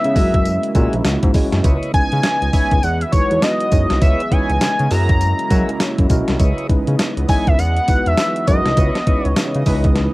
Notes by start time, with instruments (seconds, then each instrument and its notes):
Already playing: analog synth pad C#3 E3 G#3 B3 D#5, tine electric piano G#3 C#4 D#4 E4 B4, analog synth lead E5
0.04 analog synth bass C#3, closed hi-hat
0.14 analog synth bass F#2, analog synth pad C#3 F#3 A#3 E4, tine electric piano G#3 C#4 E4 F#4 A#4, tonewheel organ F#4 G#4 A#4 E5, kick, open hi-hat, tambourine
0.34 kick, closed hi-hat
0.45 closed hi-hat, tambourine
0.63 closed hi-hat
0.75 analog synth bass A#2, tine electric piano G#3 C#4 E4 F#4 A#4, tonewheel organ F#4 G#4 A#4 E5, kick, closed hi-hat, tambourine
0.93 analog synth bass A#1, closed hi-hat
1.05 analog synth bass C#2, snare, closed hi-hat, tambourine
1.23 analog synth bass G#2, kick, closed hi-hat
1.34 tine electric piano G#3 C#4 E4 F#4 C#5, kick, open hi-hat, tambourine
1.52 analog synth bass F#2, snare, closed hi-hat
1.62 analog synth bass C#2, analog synth pad E3 B3 D#5, tonewheel organ E4 B4 C#5 D#5, kick, closed hi-hat, tambourine
1.83 closed hi-hat
1.94 analog synth bass C#3, tine electric piano G#3 C#4 D#4 E4 B4, analog synth lead G#5, kick, closed hi-hat
2.12 analog synth bass C#3, closed hi-hat
2.23 snare, closed hi-hat, tambourine
2.42 analog synth bass C#2, closed hi-hat
2.53 tine electric piano G#3 C#4 D#4 E4 C#5, tonewheel organ E4 B4 C#5 D#5, kick, open hi-hat, tambourine
2.71 analog synth bass C#2, kick, closed hi-hat
2.82 analog synth bass E2, analog synth pad E3 F#3 G#3 B3 F#4, analog synth lead F#5, closed hi-hat, tambourine
3.01 analog synth lead E5, closed hi-hat
3.12 analog synth bass E2, tine electric piano G#3 D#4 E4 F#4 B4, analog synth lead C#5, kick, closed hi-hat, tambourine
3.31 analog synth bass E2, closed hi-hat
3.42 analog synth lead D#5, snare, closed hi-hat, tambourine
3.60 closed hi-hat
3.71 analog synth bass F#2, tine electric piano G#3 D#4 E4 F#4 C#5, kick, closed hi-hat, tambourine
3.90 analog synth bass C2, snare, closed hi-hat
4.02 analog synth bass C#2, analog synth pad C#3 E3 D#5, tonewheel organ E4 B4 C#5 D#5, analog synth lead E5, kick, closed hi-hat, tambourine
4.20 closed hi-hat
4.31 tine electric piano G#3 C#4 D#4 E4 B4, tonewheel organ E4 B4 C#5 D#5, analog synth lead G#5, kick, closed hi-hat
4.50 analog synth bass C#2, closed hi-hat
4.61 analog synth bass C#3, snare, closed hi-hat, tambourine
4.79 analog synth bass C#3, closed hi-hat
4.91 analog synth bass F#2, analog synth pad F#3 A#3 E4, tine electric piano G#3 C#4 E4 F#4 A#4, tonewheel organ F#4 G#4 A#4 E5, analog synth lead A#5, open hi-hat, tambourine
5.09 kick, closed hi-hat
5.21 closed hi-hat, tambourine
5.39 closed hi-hat
5.50 analog synth bass F#3, tine electric piano G#3 C#4 E4 F#4 A#4, tonewheel organ F#4 G#4 A#4 E5, kick, closed hi-hat, tambourine
5.69 closed hi-hat
5.80 snare, closed hi-hat, tambourine
5.98 analog synth bass F#2, kick, closed hi-hat
6.10 analog synth bass B1, tine electric piano G#3 C#4 E4 F#4 A#4, kick, closed hi-hat, tambourine
6.28 analog synth bass C2, snare, closed hi-hat
6.39 analog synth bass C#2, analog synth pad E3 B3 D#5, tonewheel organ E4 B4 C#5 D#5, kick, closed hi-hat, tambourine
6.58 closed hi-hat
6.69 analog synth bass C#3, tine electric piano G#3 C#4 D#4 E4 B4, kick, closed hi-hat
6.87 analog synth bass C#3, closed hi-hat
6.99 snare, closed hi-hat, tambourine
7.17 analog synth bass C#2, closed hi-hat
7.28 tine electric piano G#3 C#4 D#4 E4 A#4, tonewheel organ E4 B4 C#5 D#5, analog synth lead G#5, kick, open hi-hat, tambourine
7.47 analog synth bass C#2, analog synth lead E5, kick, closed hi-hat
7.58 analog synth bass E2, analog synth pad E3 F#3 F#4, analog synth lead F#5, closed hi-hat, tambourine
7.76 closed hi-hat
7.88 analog synth bass E2, tine electric piano G#3 D#4 E4 F#4 B4, kick, closed hi-hat, tambourine
8.06 analog synth bass E2, analog synth lead E5, closed hi-hat
8.17 snare, closed hi-hat, tambourine
8.36 closed hi-hat
8.47 analog synth bass F#2, tine electric piano G#3 D#4 E4 F#4 B4, analog synth lead D#5, kick, closed hi-hat, tambourine
8.65 analog synth bass C2, snare, closed hi-hat
8.77 analog synth bass C#2, analog synth pad C#3 E3 D#5, tonewheel organ E4 B4 C#5 D#5, kick, closed hi-hat, tambourine
8.95 snare, closed hi-hat
9.07 tine electric piano G#3 C#4 D#4 E4 B4, tonewheel organ E4 B4 C#5 D#5, kick, closed hi-hat
9.25 analog synth bass C#2, analog synth lead C#5, closed hi-hat
9.36 analog synth bass C#3, snare, closed hi-hat, tambourine
9.55 analog synth bass C#3, closed hi-hat
9.66 analog synth bass C#2, tine electric piano G#3 C#4 D#4 E4 B4, tonewheel organ E4 B4 C#5 D#5, kick, open hi-hat, tambourine
9.84 kick, closed hi-hat
9.96 snare, closed hi-hat